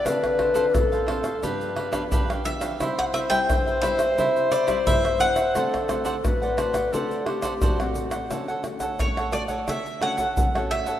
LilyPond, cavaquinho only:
\new Staff \with { instrumentName = "Cavaquinho" } { \time 4/4 \key d \mixolydian \tempo 4 = 87 <d' a' f''>8 <d' a' c'' f''>16 <d' a' c'' f''>16 r16 <a' c'' f''>16 <d' a' c'' f''>16 <a' c'' f''>16 <d' g' b' f''>8 <d' g' b' f''>16 <d' g' b' f''>16 <d' g' b' f''>16 <g' b' f''>8 <g' b' f''>16 | <e' c'' e''>8 <e' b' c'' e''>16 <e' b' c'' e''>16 r16 <b' c'' e''>16 <e' b' c'' e''>16 <b' c'' e''>16 <e' c'' e''>8 <e' b' c'' e''>16 <e' b' c'' e''>16 <e' b' c'' e''>16 <c'' e''>8 <b' c'' e''>16 | <d' c'' d'' fis''>8 <d' c'' d'' fis''>16 <d' c'' d'' fis''>16 r16 <c'' d'' fis''>16 <d' c'' d'' fis''>16 <c'' d'' fis''>16 <d' c'' d'' fis''>8 <d' c'' d'' fis''>16 <d' c'' d'' fis''>16 <d' c'' d'' fis''>16 <c'' d'' fis''>8 <c'' d'' fis''>16 | \key d \major <d' a' cis'' fis''>16 <a' cis'' fis''>16 r16 <a' cis'' fis''>16 <d' a' cis'' fis''>16 <a' cis'' fis''>8 <a' cis'' fis''>16 <d' a' cis'' fis''>16 r16 <d' a' cis'' fis''>16 <a' cis'' fis''>8 <a' cis'' fis''>16 <d' a' cis'' fis''>16 <a' cis'' fis''>16 | }